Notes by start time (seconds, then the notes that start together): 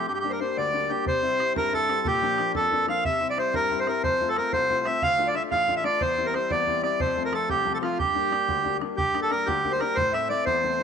0.07 G2 G4
0.14 G4
0.20 G3 A#3 D4 G4
0.30 A#4 C5
0.39 G3 A#3 D4 C5
0.57 D2 D5
0.72 G3 A#3 D4
0.88 G3 A#3 D4 G4
1.05 C3 C5, bodhran
1.22 G3 C4 E4
1.39 G3 C4 E4, bodhran
1.55 G2 A#4, bodhran
1.72 G3 C4 E4 A4, bodhran
1.88 G3 C4 E4, bodhran
2.05 A#2 G4, bodhran
2.22 F3 A#3 D4
2.38 F3 A#3 D4, bodhran
2.55 F2 A4, bodhran
2.71 F3 A#3 D4, bodhran
2.87 F3 A#3 D4 F5, bodhran
3.04 C3 E5, bodhran
3.20 G3 C4 E4
3.30 D5
3.37 G3 C4 E4 C5, bodhran
3.54 G2 A#4, bodhran
3.69 G3 C4 E4, bodhran
3.80 C5
3.86 G3 C4 E4 A#4, bodhran
4.04 F2 C5, bodhran
4.21 A3 C4 F4
4.29 A4
4.36 A3 C4 F4 A#4, bodhran
4.53 C2 C5, bodhran
4.69 A3 C4 F4, bodhran
4.85 A3 C4 F4 E5, bodhran
5.02 D2 F5, bodhran
5.18 A3 D4 F4
5.28 D5
5.34 A3 D4 F4 E5, bodhran
5.51 A1 F5, bodhran
5.67 A3 D4 F4, bodhran
5.76 E5
5.84 A3 D4 F4 D5, bodhran
6.01 E2 C5, bodhran
6.17 G3 C4 E4
6.26 A#4
6.33 G3 C4 E4 C5, bodhran
6.51 E2 D5, bodhran
6.67 G3 C4 E4, bodhran
6.83 G3 C4 E4 D5, bodhran
7.00 F2 C5, bodhran
7.16 F3 A3 C4
7.25 A#4
7.32 F3 A3 C4 A4, bodhran
7.49 C2 G4, bodhran
7.65 F3 A3 C4, bodhran
7.74 A4
7.82 F3 A3 C4 F4, bodhran
7.99 G2 G4, bodhran
8.14 G3 A#3 D4
8.31 G3 A#3 D4, bodhran
8.48 D2, bodhran
8.63 G3 A#3 D4, bodhran
8.81 G3 A#3 D4, bodhran
8.97 G2 G4, bodhran
9.14 G3 A#3 D4, bodhran
9.22 A4
9.30 G3 A#3 D4 A#4, bodhran
9.46 D2 G4, bodhran
9.64 G3 A#3 D4, bodhran
9.72 C5
9.80 G3 A#3 D4 A#4, bodhran
9.96 A2 C5, bodhran
10.13 A3 C4 E4 E5, bodhran
10.29 A3 C4 E4 D5
10.46 E2 C5, bodhran
10.63 A3 C4 E4, bodhran
10.79 A3 C4